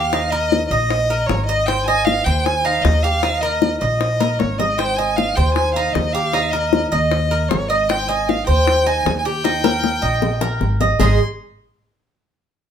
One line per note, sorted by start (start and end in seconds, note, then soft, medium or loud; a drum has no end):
0.00 0.65 D#2 medium
0.00 0.12 G4 medium
0.00 0.32 F5 loud
0.13 0.32 D#4 medium
0.13 high bongo medium
0.30 0.70 A#4 medium
0.30 0.68 D#5 loud
0.30 high bongo soft
0.52 high bongo medium
0.69 1.25 A#1 medium
0.69 1.28 D#5 loud
0.69 1.09 D#5 medium
0.91 high bongo medium
1.10 1.48 A#4 medium
1.10 high bongo soft
1.27 2.20 G#1 medium
1.27 1.46 C#5 loud
1.27 high bongo medium
1.27 low bongo medium
1.46 1.68 D#5 medium
1.66 1.87 C5 medium
1.66 1.86 G5 loud
1.66 high bongo medium
1.86 2.25 D#5 medium
1.86 2.06 G#5 loud
1.86 high bongo soft
2.05 2.26 F5 loud
2.05 high bongo medium
2.24 2.81 D#2 medium
2.24 2.64 C5 medium
2.24 2.46 G5 loud
2.45 2.67 G#5 loud
2.45 high bongo medium
2.65 3.03 D#4 medium
2.65 2.83 F5 loud
2.65 high bongo soft
2.82 3.76 D#2 medium
2.82 3.04 D#5 loud
2.82 high bongo medium
2.82 low bongo medium
3.03 3.23 G4 medium
3.03 3.43 F5 loud
3.03 high bongo soft
3.23 3.42 D#4 medium
3.23 high bongo medium
3.41 3.81 A#4 medium
3.41 3.80 D#5 loud
3.41 high bongo soft
3.62 high bongo medium
3.81 4.36 A#1 medium
3.81 4.40 D#5 loud
3.81 4.19 D#5 medium
4.01 high bongo medium
4.20 4.58 A#4 medium
4.20 high bongo medium
4.39 5.31 G#1 medium
4.39 4.60 C#5 medium
4.39 high bongo medium
4.58 4.79 D#5 medium
4.58 4.78 D#5 medium
4.58 low bongo medium
4.78 4.98 C5 medium
4.78 4.98 G5 loud
4.78 high bongo medium
4.96 5.36 D#5 medium
4.96 5.18 G#5 medium
4.96 high bongo soft
5.17 5.37 F5 medium
5.17 high bongo medium
5.35 5.92 D#2 medium
5.35 5.75 C5 medium
5.35 5.54 G5 medium
5.54 5.74 G#5 loud
5.54 high bongo medium
5.74 6.14 D#4 medium
5.74 5.94 F5 medium
5.74 high bongo soft
5.93 6.86 D#2 medium
5.93 6.14 D#5 medium
5.93 high bongo medium
5.93 low bongo medium
6.13 6.34 G4 medium
6.13 6.53 F5 loud
6.13 high bongo soft
6.33 6.53 D#4 medium
6.33 high bongo medium
6.51 6.91 A#4 medium
6.51 6.91 D#5 medium
6.51 high bongo soft
6.73 high bongo medium
6.92 7.47 D#2 medium
6.92 7.50 D#5 medium
6.92 7.30 D#5 medium
7.12 high bongo medium
7.31 7.69 A#4 medium
7.31 high bongo soft
7.49 8.42 G#1 medium
7.49 7.70 C#5 medium
7.49 high bongo medium
7.49 low bongo medium
7.69 7.90 D#5 medium
7.69 7.89 D#5 medium
7.89 8.08 C5 medium
7.89 8.09 G5 loud
7.89 high bongo medium
8.08 8.46 D#5 medium
8.08 8.30 G#5 loud
8.08 high bongo soft
8.29 8.46 F5 medium
8.29 high bongo medium
8.47 9.02 D#2 medium
8.47 8.85 C5 medium
8.47 8.88 G5 loud
8.68 high bongo medium
8.86 9.24 D#4 medium
8.86 9.18 G#5 loud
8.86 high bongo soft
9.05 9.97 D#2 medium
9.05 high bongo medium
9.05 low bongo medium
9.19 9.27 G#5 medium
9.25 9.44 G4 medium
9.25 10.61 G5 loud
9.25 high bongo soft
9.44 9.63 D#4 medium
9.44 high bongo medium
9.64 10.02 A#4 medium
9.64 high bongo loud
9.84 high bongo medium
10.02 10.57 A#1 medium
10.02 10.40 D#5 medium
10.22 low bongo medium
10.41 10.79 A#4 medium
10.41 low bongo medium
10.61 10.95 G#1 medium
10.61 low bongo medium
10.80 10.99 D#5 medium
10.80 low bongo medium
10.99 11.18 G#1 medium
10.99 11.18 G#3 medium
10.99 11.18 D#4 medium
10.99 11.19 G#4 loud
10.99 11.18 C6 medium
10.99 low bongo loud